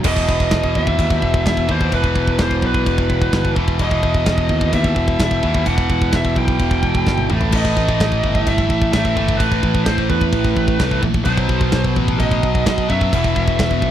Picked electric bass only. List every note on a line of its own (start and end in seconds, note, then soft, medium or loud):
0.04 0.26 E1 medium
0.28 0.50 E1 medium
0.52 0.73 E1 medium
0.76 0.97 D#2 medium
0.98 1.20 D#2 loud
1.22 1.44 E1 medium
1.45 1.67 E1 medium
1.69 1.90 D#2 medium
1.92 2.14 E1 medium
2.16 2.37 E1 medium
2.40 2.61 E1 loud
2.63 2.84 B1 loud
2.86 3.08 E1 loud
3.10 3.31 E1 loud
3.32 3.54 G1 medium
3.56 3.78 E1 loud
3.80 4.01 E1 medium
4.03 4.24 E1 medium
4.26 4.48 E1 medium
4.50 4.71 D#2 loud
4.73 4.95 D#2 loud
4.97 5.18 E1 loud
5.19 5.41 E1 medium
5.43 5.64 D#2 medium
5.66 5.88 E1 medium
5.89 6.11 E1 medium
6.12 6.34 E1 medium
6.36 6.58 B1 medium
6.59 6.81 E1 loud
6.83 7.04 E1 medium
7.06 7.28 G1 medium
7.30 7.51 A1 medium
7.53 7.75 A1 medium
7.77 7.98 A1 medium
8.00 8.21 A1 medium
8.24 8.45 G1 loud
8.47 8.68 G1 loud
8.70 8.91 A1 medium
8.93 9.15 A1 medium
9.16 9.38 G1 medium
9.41 9.62 A1 loud
9.63 9.85 A1 medium
9.87 10.08 A1 medium
10.10 10.31 E2 loud
10.33 10.54 A1 loud
10.56 10.77 A1 loud
10.80 11.01 C2 medium
11.03 11.24 A#1 medium
11.26 11.47 B1 loud
11.49 11.71 B1 medium
11.73 11.94 B1 loud
11.97 12.18 A1 medium
12.20 12.41 A1 loud
12.43 12.64 B1 medium
12.66 12.87 B1 medium
12.90 13.11 F#2 loud
13.12 13.34 E1 medium
13.36 13.57 E1 medium
13.59 13.81 E1 loud
13.82 13.91 B1 medium